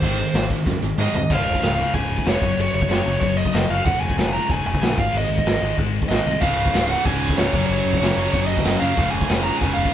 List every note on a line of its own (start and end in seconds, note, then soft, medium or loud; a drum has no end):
0.00 0.22 G#1 medium
0.00 0.17 G#2 medium
0.00 0.17 D#3 loud
0.00 0.17 G#3 loud
0.00 0.47 C5 medium
0.00 kick loud
0.00 crash medium
0.18 0.33 G#2 medium
0.18 0.33 D#3 medium
0.18 crash medium
0.34 0.53 G#1 medium
0.34 0.48 G#2 medium
0.34 0.49 D#3 medium
0.34 snare loud
0.34 crash medium
0.50 0.64 G#2 medium
0.50 0.65 D#3 medium
0.50 kick medium
0.50 crash medium
0.66 0.76 F#2 medium
0.66 0.81 G#2 medium
0.66 0.81 D#3 medium
0.66 kick loud
0.66 snare medium
0.83 0.92 G#1 medium
0.83 0.97 G#2 medium
0.83 0.97 D#3 medium
0.98 1.07 G#2 medium
0.98 1.13 G#2 medium
0.98 1.14 D#3 medium
0.98 1.14 G#3 medium
0.98 1.16 D#5 medium
0.98 mid tom medium
1.14 1.24 C2 medium
1.14 1.29 G#2 medium
1.14 1.29 D#3 medium
1.14 1.32 D#5 medium
1.14 floor tom medium
1.30 1.41 C#1 medium
1.30 1.61 C#2 loud
1.30 1.62 G#2 loud
1.30 1.63 C#3 loud
1.30 1.97 F5 loud
1.30 kick loud
1.30 crash loud
1.30 crash medium
1.46 1.56 C#1 medium
1.54 kick medium
1.62 1.83 C#1 loud
1.62 1.78 C#2 medium
1.62 1.77 G#2 medium
1.62 1.77 C#3 loud
1.62 snare loud
1.62 crash medium
1.78 1.93 C#2 medium
1.78 1.93 G#2 medium
1.78 1.94 C#3 loud
1.93 2.05 C#1 medium
1.93 2.23 C#2 medium
1.93 2.24 G#2 medium
1.93 2.25 C#3 medium
1.93 2.27 G#5 loud
1.93 kick loud
1.93 crash medium
2.10 2.20 C#1 loud
2.18 kick medium
2.25 2.36 F1 medium
2.25 2.40 C#2 medium
2.25 2.41 G#2 medium
2.25 2.40 C#3 loud
2.25 2.60 C#5 loud
2.25 snare loud
2.25 crash medium
2.40 2.52 F#1 medium
2.40 2.58 F#2 medium
2.40 2.56 C#3 loud
2.40 2.56 F#3 loud
2.40 kick loud
2.57 2.68 F#1 medium
2.57 2.88 F#2 medium
2.57 2.88 C#3 loud
2.57 2.88 F#3 loud
2.57 crash medium
2.61 2.73 C#5 loud
2.74 2.84 F#1 medium
2.74 2.89 C#5 medium
2.81 kick medium
2.89 3.00 F#1 medium
2.89 3.05 F#2 medium
2.89 3.05 C#3 loud
2.89 3.06 F#3 loud
2.89 3.20 C#5 medium
2.89 snare loud
2.89 crash medium
3.06 3.16 F#1 medium
3.06 3.20 F#2 medium
3.06 3.20 C#3 loud
3.06 3.19 F#3 loud
3.20 3.42 F#1 medium
3.20 3.53 F#2 medium
3.20 3.53 C#3 medium
3.20 3.52 F#3 medium
3.20 3.37 C#5 loud
3.20 kick loud
3.20 crash medium
3.37 3.53 D#5 medium
3.46 kick medium
3.53 3.64 F#1 medium
3.53 3.68 F#2 medium
3.53 3.68 C#3 loud
3.53 3.68 F#3 medium
3.53 3.70 D#5 loud
3.53 snare loud
3.53 crash medium
3.69 3.80 F#1 medium
3.69 3.84 F#2 medium
3.69 3.84 C#3 medium
3.69 3.85 F#3 loud
3.69 3.86 F5 loud
3.85 3.96 F1 loud
3.85 4.15 C#2 loud
3.85 4.16 G#2 loud
3.85 4.16 C#3 loud
3.85 4.00 F#5 loud
3.85 kick loud
3.85 crash medium
4.01 4.12 F1 loud
4.01 4.31 G#5 loud
4.10 kick medium
4.16 4.38 F1 loud
4.16 4.33 C#2 loud
4.16 4.32 G#2 medium
4.16 4.32 C#3 loud
4.16 snare loud
4.16 crash medium
4.33 4.47 C#2 medium
4.33 4.48 G#2 loud
4.33 4.48 C#3 medium
4.33 4.50 A#5 loud
4.48 4.60 F1 medium
4.48 4.80 C#2 medium
4.48 4.81 G#2 loud
4.48 4.82 C#3 loud
4.48 4.66 G#5 loud
4.48 kick loud
4.48 crash medium
4.66 4.76 F1 loud
4.66 4.99 G#5 loud
4.74 kick medium
4.81 4.92 A#1 medium
4.81 4.95 C#2 medium
4.81 4.95 G#2 medium
4.81 4.97 C#3 loud
4.81 snare loud
4.81 crash medium
4.96 5.08 G#1 medium
4.96 5.12 G#2 loud
4.96 5.12 D#3 loud
4.96 5.12 G#3 loud
4.96 5.15 F5 medium
4.96 kick loud
5.12 5.24 G#1 loud
5.12 5.45 G#2 loud
5.12 5.44 D#3 loud
5.12 5.45 G#3 loud
5.12 crash medium
5.18 5.75 D#5 loud
5.30 5.40 G#1 medium
5.38 kick medium
5.45 5.56 G#1 medium
5.45 5.62 G#2 medium
5.45 5.62 D#3 loud
5.45 5.63 G#3 loud
5.45 snare loud
5.45 crash medium
5.61 5.72 G#1 loud
5.61 5.78 G#2 medium
5.61 5.78 D#3 medium
5.61 5.77 G#3 medium
5.78 5.99 G#1 medium
5.78 6.09 G#2 medium
5.78 6.09 D#3 medium
5.78 6.08 G#3 loud
5.78 kick loud
5.78 crash soft
6.02 kick medium
6.09 6.20 G#1 medium
6.09 6.23 G#2 medium
6.09 6.24 D#3 medium
6.09 6.25 G#3 medium
6.09 6.42 D#5 loud
6.09 snare loud
6.09 crash medium
6.24 6.36 C2 medium
6.24 6.40 G#2 medium
6.24 6.40 D#3 medium
6.24 6.41 G#3 medium
6.41 6.52 C#1 loud
6.41 6.72 C#2 loud
6.41 6.72 G#2 loud
6.41 6.73 C#3 loud
6.41 6.82 F5 loud
6.41 kick loud
6.41 crash medium
6.57 6.68 C#1 medium
6.66 kick medium
6.73 6.94 C#1 medium
6.73 6.88 C#2 medium
6.73 6.87 G#2 loud
6.73 6.86 C#3 loud
6.73 snare loud
6.73 crash medium
6.86 7.03 C#2 medium
6.86 7.04 G#2 medium
6.86 7.04 C#3 medium
6.86 6.90 F5 medium
6.86 7.05 F#5 medium
7.04 7.16 C#1 medium
7.04 7.35 C#2 medium
7.04 7.36 G#2 loud
7.04 7.37 C#3 loud
7.04 7.37 G#5 loud
7.04 kick loud
7.04 crash medium
7.22 7.32 C#1 medium
7.29 kick medium
7.37 7.47 C#1 loud
7.37 7.52 C#2 medium
7.37 7.52 G#2 medium
7.37 7.51 C#3 medium
7.37 7.65 C#5 loud
7.37 snare loud
7.37 crash medium
7.52 7.64 F#1 loud
7.52 7.69 F#2 loud
7.52 7.68 C#3 loud
7.52 7.68 F#3 loud
7.52 kick loud
7.67 7.80 F#1 loud
7.67 8.01 F#2 medium
7.67 8.01 C#3 loud
7.67 8.00 F#3 loud
7.67 7.97 C#5 medium
7.67 crash medium
7.85 7.95 F#1 loud
7.93 kick medium
7.98 8.11 F#1 loud
7.98 8.16 C#3 medium
7.98 8.17 F#3 medium
7.98 8.30 C#5 loud
8.02 8.16 F#2 medium
8.02 snare loud
8.02 crash medium
8.16 8.27 F#1 loud
8.16 8.34 F#2 medium
8.16 8.32 C#3 loud
8.16 8.32 F#3 loud
8.31 8.54 F#1 medium
8.31 8.65 F#2 medium
8.31 8.65 C#3 loud
8.31 8.64 F#3 loud
8.31 8.46 C#5 loud
8.31 kick loud
8.31 crash medium
8.46 8.60 D#5 medium
8.57 8.78 D#5 loud
8.57 kick loud
8.64 8.75 F#1 medium
8.64 8.80 F#2 medium
8.64 8.80 C#3 medium
8.64 8.80 F#3 loud
8.64 snare loud
8.64 crash medium
8.80 8.96 F#2 medium
8.80 8.92 F#2 medium
8.80 8.96 C#3 medium
8.80 8.96 F#3 loud
8.80 9.11 F5 loud
8.96 9.08 F1 loud
8.96 9.27 C#2 loud
8.96 9.28 G#2 loud
8.96 9.28 C#3 loud
8.96 kick loud
8.96 crash medium
9.11 9.24 F1 medium
9.11 9.42 G#5 loud
9.21 kick medium
9.28 9.50 F1 loud
9.28 9.44 C#2 medium
9.28 9.44 G#2 loud
9.28 9.43 C#3 loud
9.28 snare loud
9.28 crash medium
9.43 9.59 C#2 medium
9.43 9.59 G#2 medium
9.43 9.60 C#3 medium
9.43 9.60 A#5 loud
9.58 9.72 F1 medium
9.58 9.91 C#2 medium
9.58 9.92 G#2 medium
9.58 9.92 C#3 loud
9.58 9.73 G#5 loud
9.58 kick loud
9.58 crash medium
9.73 9.87 F1 loud
9.73 9.94 F5 loud
9.85 kick medium